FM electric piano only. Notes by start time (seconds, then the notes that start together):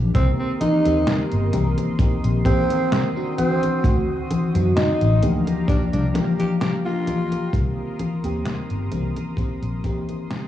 Already playing: G4
0.14 D#3 A#3 C4 G4
0.84 D#3 A#3 C4 G4
1.53 D#3 A#3 C4 G4
1.99 D#3 A#3 C4 G4
2.45 D#3 A#3 C4 G4
3.15 D#3 C4 D4 F#4
3.83 D#3 C4 D4 F#4
4.54 D3 D#3 C4 F#4
5.22 F3 A#3 D4 G4
5.68 F3 A#3 D4 G4
6.14 F3 A#3 D4 G4
6.85 F3 A#3 D4 G4
7.52 D#3 A#3 C4 G4
8.23 D#3 A#3 C4 G4
8.91 D#3 A#3 C4 G4
9.37 D#3 A#3 C4 G4
9.83 D#3 A#3 C4 G4